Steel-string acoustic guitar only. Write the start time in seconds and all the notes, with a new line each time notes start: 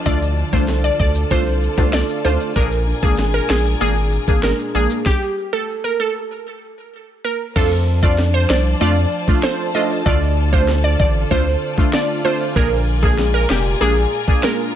Already playing: F3 D4 A4 C5
0.06 D3
0.37 D4
0.68 A3 D4 A4
1.00 A4
1.93 A3 D4 A4
2.56 A#2
2.87 D4
3.18 G#3 D4 G#4
3.50 G#4
4.43 G#3 D4 G#4
7.56 F3 C5
8.18 D4
9.43 D4 A4 C5
9.75 A4
10.06 D3 F4
10.68 A3
11.93 A3 D4 F4
12.25 D4
12.56 A#2 F4
13.18 G#3
14.43 G#3 D4 F4